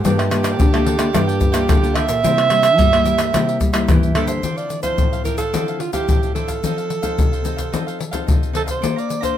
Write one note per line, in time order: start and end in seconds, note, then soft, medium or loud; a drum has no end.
0.00 0.17 F4 medium
0.00 1.97 G4 medium
0.04 0.60 G2 loud
0.04 0.57 G3 medium
0.04 0.28 A#3 medium
0.04 0.28 F4 medium
0.04 0.28 A4 medium
0.04 0.18 A#4 medium
0.04 0.18 D5 medium
0.04 0.17 G5 medium
0.04 pandeiro medium
0.04 shaker medium
0.04 surdo medium
0.18 0.30 A#4 soft
0.18 0.30 D5 medium
0.18 0.30 G5 medium
0.18 pandeiro soft
0.18 tamborim medium
0.18 shaker soft
0.30 0.69 A#3 medium
0.30 0.69 F4 medium
0.30 0.69 A4 medium
0.30 muted cavaquinho stroke soft
0.30 pandeiro medium
0.30 tamborim medium
0.30 shaker medium
0.43 0.72 A#4 medium
0.43 0.71 D5 medium
0.43 0.71 G5 medium
0.43 pandeiro medium
0.43 tamborim medium
0.43 shaker medium
0.60 1.12 D3 medium
0.60 0.83 D3 medium
0.60 pandeiro medium
0.60 shaker medium
0.60 surdo loud
0.73 0.97 A#3 medium
0.73 0.97 F4 medium
0.73 0.97 A4 medium
0.73 0.84 A#4 soft
0.73 0.85 D5 soft
0.73 0.85 G5 medium
0.73 pandeiro soft
0.73 tamborim medium
0.73 shaker soft
0.84 1.10 D3 medium
0.84 0.98 F4 medium
0.84 0.98 A#4 medium
0.84 0.97 D5 medium
0.84 0.96 G5 medium
0.84 pandeiro medium
0.97 1.09 A#3 medium
0.97 1.09 F4 medium
0.97 1.10 A4 medium
0.97 1.12 A#4 medium
0.97 1.12 D5 medium
0.97 1.12 G5 medium
0.97 pandeiro medium
0.97 tamborim medium
0.97 shaker medium
1.13 1.61 G2 loud
1.13 1.66 G3 medium
1.13 1.51 A#3 medium
1.13 1.26 F4 medium
1.13 1.51 F4 medium
1.13 1.51 A4 medium
1.13 1.27 A#4 medium
1.13 1.27 D5 medium
1.13 1.26 G5 medium
1.13 pandeiro medium
1.13 tamborim medium
1.13 shaker medium
1.13 surdo medium
1.27 1.39 A#4 soft
1.27 1.40 D5 soft
1.27 1.40 G5 medium
1.27 pandeiro soft
1.27 shaker soft
1.41 pandeiro medium
1.41 shaker medium
1.41 surdo medium
1.52 1.77 A#3 medium
1.52 1.77 F4 medium
1.52 1.78 A4 medium
1.52 1.67 A#4 medium
1.52 1.67 D5 medium
1.52 1.66 G5 medium
1.52 pandeiro medium
1.52 tamborim medium
1.52 shaker medium
1.67 2.21 D3 medium
1.67 2.04 D3 medium
1.67 1.93 F4 medium
1.67 1.94 A#4 medium
1.67 1.95 D5 medium
1.67 1.95 G5 medium
1.67 pandeiro medium
1.67 tamborim medium
1.67 shaker medium
1.67 surdo loud
1.82 2.19 A#3 medium
1.82 2.20 F4 medium
1.82 2.20 A4 medium
1.82 pandeiro soft
1.82 shaker soft
1.94 2.08 F4 medium
1.94 2.07 A#4 medium
1.94 2.07 D5 medium
1.94 3.88 E5 loud
1.94 2.05 G5 medium
1.94 pandeiro medium
1.94 tamborim medium
2.06 2.21 A#2 medium
2.06 2.22 A#4 soft
2.06 2.22 D5 medium
2.06 2.21 G5 soft
2.06 pandeiro medium
2.06 shaker medium
2.23 2.78 C3 loud
2.23 2.76 C3 soft
2.23 2.47 G3 soft
2.23 2.47 A#3 medium
2.23 2.36 E4 medium
2.23 2.47 E4 medium
2.23 2.36 A#4 medium
2.23 2.37 C5 medium
2.23 2.36 E5 medium
2.23 pandeiro medium
2.23 shaker medium
2.23 surdo medium
2.37 2.49 A#4 soft
2.37 2.49 C5 soft
2.37 2.50 E5 medium
2.37 pandeiro soft
2.37 tamborim medium
2.37 shaker soft
2.50 2.67 G3 medium
2.50 2.67 A#3 medium
2.50 2.68 E4 medium
2.50 pandeiro medium
2.50 tamborim medium
2.62 2.91 A#4 medium
2.62 2.91 C5 medium
2.62 2.90 E5 medium
2.62 pandeiro medium
2.62 tamborim medium
2.62 shaker medium
2.78 3.31 G2 medium
2.78 3.02 G3 medium
2.78 2.87 G3 medium
2.78 2.87 A#3 medium
2.78 2.87 E4 medium
2.78 pandeiro medium
2.78 shaker medium
2.78 surdo loud
2.92 3.30 G3 medium
2.92 3.30 A#3 medium
2.92 3.30 E4 medium
2.92 3.04 A#4 soft
2.92 3.05 C5 soft
2.92 3.05 E5 soft
2.92 pandeiro soft
2.92 tamborim medium
2.92 shaker soft
3.05 3.29 G3 medium
3.05 3.18 E4 medium
3.05 3.19 A#4 soft
3.05 3.17 C5 medium
3.05 3.17 E5 medium
3.05 pandeiro medium
3.05 shaker medium
3.18 3.33 A#4 medium
3.18 3.32 C5 medium
3.18 3.32 E5 medium
3.18 pandeiro medium
3.18 tamborim medium
3.18 shaker medium
3.33 3.57 C3 loud
3.33 3.86 C3 medium
3.33 3.71 G3 medium
3.33 3.71 A#3 medium
3.33 3.46 E4 medium
3.33 3.71 E4 medium
3.33 3.46 A#4 medium
3.33 3.47 C5 medium
3.33 3.46 E5 medium
3.33 pandeiro medium
3.33 tamborim medium
3.33 shaker medium
3.33 surdo medium
3.47 3.59 A#4 soft
3.47 3.60 C5 soft
3.47 3.60 E5 medium
3.47 pandeiro soft
3.47 shaker soft
3.60 3.85 G3 medium
3.60 muted cavaquinho stroke soft
3.60 pandeiro medium
3.60 shaker medium
3.60 surdo medium
3.73 4.11 G3 medium
3.73 4.11 A#3 medium
3.73 4.11 E4 medium
3.73 3.88 A#4 medium
3.73 3.87 C5 medium
3.73 3.87 E5 medium
3.73 pandeiro medium
3.73 tamborim medium
3.73 shaker medium
3.88 4.41 G2 medium
3.88 4.13 E3 medium
3.88 4.15 E4 medium
3.88 4.15 A#4 medium
3.88 4.15 C5 medium
3.88 4.16 E5 medium
3.88 pandeiro medium
3.88 tamborim medium
3.88 shaker medium
3.88 surdo loud
4.03 pandeiro soft
4.03 shaker soft
4.14 4.40 D3 medium
4.14 4.41 G3 soft
4.14 4.41 A#3 medium
4.14 4.41 E4 medium
4.14 4.29 E4 medium
4.14 4.29 A4 medium
4.14 4.29 A#4 medium
4.14 4.28 C5 medium
4.14 4.27 E5 medium
4.14 pandeiro medium
4.14 tamborim medium
4.27 4.43 A#4 soft
4.27 4.59 C5 loud
4.27 4.42 C5 soft
4.27 4.42 E5 soft
4.27 pandeiro medium
4.27 shaker medium
4.43 4.96 D3 medium
4.43 4.80 F3 soft
4.43 4.80 C4 soft
4.43 4.56 D4 medium
4.43 4.80 E4 medium
4.43 4.57 A4 medium
4.43 4.57 C5 medium
4.43 4.56 F5 medium
4.43 pandeiro medium
4.43 shaker medium
4.43 surdo soft
4.57 4.70 A4 soft
4.57 4.70 C5 soft
4.57 4.82 D5 medium
4.57 4.70 F5 soft
4.57 pandeiro soft
4.57 shaker soft
4.70 muted cavaquinho stroke soft
4.70 pandeiro medium
4.70 shaker medium
4.83 5.21 F3 medium
4.83 5.21 C4 medium
4.83 5.21 E4 medium
4.83 5.12 A4 soft
4.83 5.22 C5 medium
4.83 5.11 C5 medium
4.83 5.10 F5 medium
4.83 pandeiro medium
4.83 shaker medium
4.83 surdo soft
4.98 5.50 A2 medium
4.98 pandeiro medium
4.98 shaker medium
4.98 surdo medium
5.12 5.25 A4 soft
5.12 5.25 C5 soft
5.12 5.25 F5 soft
5.12 pandeiro soft
5.12 shaker soft
5.24 5.41 F3 soft
5.24 5.41 C4 medium
5.24 5.38 D4 soft
5.24 5.42 E4 medium
5.24 5.39 A4 soft
5.24 5.37 A#4 medium
5.24 5.38 C5 soft
5.24 5.37 F5 medium
5.24 pandeiro soft
5.24 shaker medium
5.24 surdo soft
5.38 5.81 A4 medium
5.38 5.53 A4 soft
5.38 5.52 C5 medium
5.38 5.52 F5 medium
5.38 pandeiro medium
5.38 shaker medium
5.38 surdo soft
5.53 6.06 D3 medium
5.53 5.79 F3 medium
5.53 5.79 C4 medium
5.53 5.66 D4 medium
5.53 5.80 E4 medium
5.53 5.67 A4 medium
5.53 5.67 C5 medium
5.53 5.67 F5 medium
5.53 pandeiro medium
5.53 shaker medium
5.53 surdo medium
5.68 5.80 A4 soft
5.68 5.81 C5 soft
5.68 5.81 F5 soft
5.68 pandeiro soft
5.68 shaker soft
5.80 5.93 F4 medium
5.80 muted cavaquinho stroke soft
5.80 pandeiro medium
5.93 6.31 F3 medium
5.93 6.31 C4 medium
5.93 6.31 E4 medium
5.93 6.32 G4 medium
5.93 6.08 A4 soft
5.93 6.07 C5 medium
5.93 6.07 F5 medium
5.93 pandeiro medium
5.93 shaker medium
5.93 surdo soft
6.08 6.61 A2 medium
6.08 6.34 D4 soft
6.08 6.35 A4 medium
6.08 6.36 C5 soft
6.08 6.36 F5 soft
6.08 pandeiro medium
6.08 shaker medium
6.08 surdo medium
6.23 pandeiro soft
6.23 shaker soft
6.35 6.59 F3 soft
6.35 6.59 C4 medium
6.35 6.48 D4 medium
6.35 6.59 E4 medium
6.35 8.24 A4 medium
6.35 6.49 A4 medium
6.35 6.48 C5 medium
6.35 6.47 F5 medium
6.35 pandeiro medium
6.48 6.63 A4 soft
6.48 6.62 C5 soft
6.48 6.61 F5 soft
6.48 pandeiro medium
6.48 shaker medium
6.48 surdo soft
6.63 7.16 F3 medium
6.63 6.89 C4 soft
6.63 6.76 D#4 medium
6.63 6.89 D#4 soft
6.63 6.76 A4 medium
6.63 6.89 A4 soft
6.63 6.77 C5 medium
6.63 6.76 F5 medium
6.63 pandeiro medium
6.63 shaker medium
6.63 surdo medium
6.77 6.89 A4 soft
6.77 6.89 C5 soft
6.77 6.89 F5 soft
6.77 pandeiro soft
6.77 shaker soft
6.90 muted cavaquinho stroke soft
6.90 pandeiro soft
7.02 7.40 C4 medium
7.02 7.41 D#4 medium
7.02 7.41 A4 medium
7.02 7.31 A4 medium
7.02 7.31 C5 medium
7.02 7.30 F5 medium
7.02 pandeiro medium
7.02 shaker medium
7.02 surdo soft
7.18 7.70 C3 medium
7.18 pandeiro medium
7.18 shaker medium
7.18 surdo medium
7.32 7.43 A4 soft
7.32 7.44 C5 soft
7.32 7.45 F5 soft
7.32 pandeiro soft
7.32 shaker soft
7.44 7.62 C4 soft
7.44 7.58 D#4 soft
7.44 7.62 D#4 medium
7.44 7.58 A4 soft
7.44 7.62 A4 medium
7.44 7.57 C5 soft
7.44 7.55 F5 medium
7.44 pandeiro medium
7.44 shaker medium
7.56 7.72 A4 medium
7.56 7.71 C5 medium
7.56 7.71 F5 medium
7.56 pandeiro medium
7.56 shaker medium
7.56 surdo soft
7.72 8.26 F3 medium
7.72 7.99 C4 medium
7.72 7.85 D#4 medium
7.72 8.00 D#4 soft
7.72 7.86 A4 medium
7.72 8.00 A4 medium
7.72 7.86 C5 medium
7.72 7.85 F5 medium
7.72 pandeiro medium
7.72 shaker medium
7.72 surdo medium
7.87 7.98 A4 soft
7.87 7.99 C5 soft
7.87 7.99 F5 soft
7.87 pandeiro soft
7.87 shaker soft
7.99 muted cavaquinho stroke soft
7.99 pandeiro medium
8.11 8.51 C4 medium
8.11 8.51 D#4 medium
8.11 8.26 A4 medium
8.11 8.51 A4 medium
8.11 8.26 C5 medium
8.11 8.26 F5 medium
8.11 pandeiro medium
8.11 shaker medium
8.11 surdo soft
8.27 8.81 C3 medium
8.27 8.52 D#4 soft
8.27 8.53 A4 soft
8.27 8.54 C5 soft
8.27 8.54 F5 medium
8.27 pandeiro medium
8.27 shaker medium
8.27 surdo loud
8.43 pandeiro soft
8.43 shaker soft
8.53 8.79 C4 soft
8.53 8.67 D#4 medium
8.53 8.79 D#4 medium
8.53 8.67 A4 medium
8.53 8.79 A4 medium
8.53 8.62 A4 medium
8.53 8.66 C5 medium
8.53 8.65 F5 medium
8.53 pandeiro medium
8.66 8.80 A4 soft
8.66 8.81 C5 soft
8.66 8.80 F5 soft
8.66 pandeiro medium
8.66 shaker medium
8.66 surdo soft
8.70 9.01 C5 medium
8.82 9.35 A#3 medium
8.82 9.20 D4 soft
8.82 8.95 A4 medium
8.82 9.20 A4 soft
8.82 9.20 C5 medium
8.82 8.95 D5 medium
8.82 8.96 F5 medium
8.82 8.95 A#5 medium
8.82 pandeiro medium
8.82 shaker medium
8.82 surdo soft
8.96 9.08 D5 soft
8.96 9.24 D5 medium
8.96 9.08 F5 soft
8.96 9.09 A#5 soft
8.96 pandeiro soft
8.96 shaker soft
9.09 muted cavaquinho stroke soft
9.09 pandeiro medium
9.09 shaker medium
9.21 9.38 D4 medium
9.21 9.38 A4 medium
9.21 9.38 C5 medium
9.21 9.38 D5 soft
9.21 9.38 F5 medium
9.21 9.38 A#5 medium
9.21 pandeiro medium
9.21 shaker medium
9.21 surdo soft
9.25 9.37 C5 medium